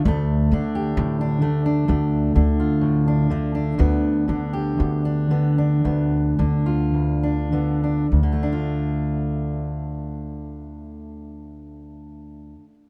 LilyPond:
<<
  \new Staff \with { instrumentName = "Steel-string acoustic guitar" } { \time 4/4 \key d \dorian \tempo 4 = 56 << { a8 d'16 g'8 d'16 a16 d'16 a8 d'16 f'8 d'16 a16 d'16 | b8 d'16 g'8 d'16 b16 d'16 b8 d'16 f'8 d'16 b16 d'16 | <d a d' f'>1 | } \\ { <d, d>8 d8 a,8 d8 d,8 d8 a,8 d8 | d,8 d8 d,8 d8 d,8 d8 d,8 d8 | d,1 | } >> }
  \new Staff \with { instrumentName = "Upright bass" } { \clef bass \time 4/4 \key d \dorian d,8 d8 d4 d,8 d,4. | d,8 d8 d4 d,8 d,4. | d,1 | }
>>